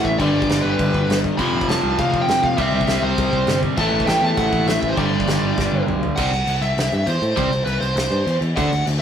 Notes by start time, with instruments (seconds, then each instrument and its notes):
Already playing: overdriven electric guitar A2 E3 A3
0.04 picked electric bass A1, lead electric guitar E5, kick
0.18 picked electric bass G1, overdriven electric guitar G2 D3 G3, lead electric guitar D5, kick, crash
0.34 picked electric bass G1
0.42 kick
0.49 picked electric bass G1, snare, crash
0.61 picked electric bass G1, lead electric guitar B4
0.79 picked electric bass G1, kick, crash
0.94 picked electric bass G1, kick
1.08 picked electric bass G1, snare, crash
1.24 kick
1.37 picked electric bass F1, overdriven electric guitar F2 C3 F3, lead electric guitar B5, kick, crash
1.53 picked electric bass F1
1.61 kick
1.68 picked electric bass F1, lead electric guitar A5, snare, crash
1.83 picked electric bass C2
1.98 picked electric bass F1, lead electric guitar F5, kick, crash
2.13 picked electric bass F1, kick
2.21 lead electric guitar G5
2.28 picked electric bass F1, snare, crash
2.43 picked electric bass F1, lead electric guitar F5, kick
2.57 picked electric bass C2, overdriven electric guitar C3 G3 C4, lead electric guitar E5, kick, crash
2.72 picked electric bass C2
2.81 kick
2.87 picked electric bass C2, snare, crash
3.02 picked electric bass C2, lead electric guitar C5
3.18 picked electric bass C2, kick, crash
3.33 picked electric bass C2, kick
3.47 picked electric bass G1, snare, crash
3.63 kick
3.77 picked electric bass A1, overdriven electric guitar A2 E3 A3, lead electric guitar A5, kick, crash
3.92 picked electric bass A1
4.00 kick
4.06 picked electric bass A1, lead electric guitar G5, snare, crash
4.21 picked electric bass E2, lead electric guitar A5
4.37 picked electric bass A1, lead electric guitar F#5, kick, crash
4.52 picked electric bass A1, kick
4.67 picked electric bass A1, lead electric guitar E5, snare, crash
4.82 picked electric bass A1, kick
4.89 lead electric guitar C5
4.97 picked electric bass G1, overdriven electric guitar G2 D3 G3, lead electric guitar D5, kick, crash
5.11 picked electric bass G1
5.20 kick
5.26 picked electric bass G1, snare, crash
5.41 picked electric bass G1
5.57 picked electric bass G1, kick, snare
5.72 picked electric bass G1
5.87 picked electric bass B1, mid tom
6.03 floor tom
6.16 picked electric bass C2, overdriven electric guitar C3 G3 C4, lead electric guitar F#5, kick, crash
6.31 picked electric bass C2, crash
6.47 picked electric bass C2, crash
6.61 picked electric bass C2, lead electric guitar E5, crash
6.77 picked electric bass C2, snare, crash
6.92 picked electric bass G2, crash
7.07 picked electric bass E2, lead electric guitar C5, crash
7.22 picked electric bass A2, crash
7.37 picked electric bass C2, overdriven electric guitar C3 G3 C4, lead electric guitar C5, kick, crash
7.50 picked electric bass C2, crash
7.65 picked electric bass C2, lead electric guitar B4, crash
7.80 picked electric bass C2, lead electric guitar C5, crash
7.96 picked electric bass C2, snare, crash
8.11 picked electric bass G2, crash
8.26 picked electric bass E2, crash
8.41 picked electric bass E2, crash
8.56 picked electric bass D2, overdriven electric guitar D3 A3 D4, lead electric guitar F#5, kick, crash
8.72 picked electric bass D2, crash
8.87 picked electric bass D2, crash